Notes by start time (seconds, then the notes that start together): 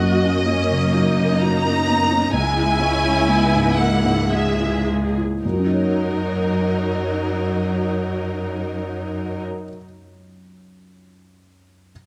Already playing: F#2 A#3 C#4 F#4 D#5
0.02 F#3
0.25 C#4
0.47 F#3 C#4
0.70 C#3
0.93 F#3 D#4
1.18 C#3
1.41 F#3 A#5
1.65 C#4
1.87 B3
2.10 C#4
2.33 C#2 G#3 E4 G#5
2.57 E4
2.80 G#3 C#4
3.04 E4
3.28 G#3 B3
3.55 G#2
3.78 G#3 A#3 F#5
4.05 G#2
4.30 G#3 G#4 E5
4.59 E4
4.88 D#4
5.17 E4
5.42 F#2 F#3 D#4 A#4
5.53 F#3
5.59 C#4
5.66 D#4
5.73 C#5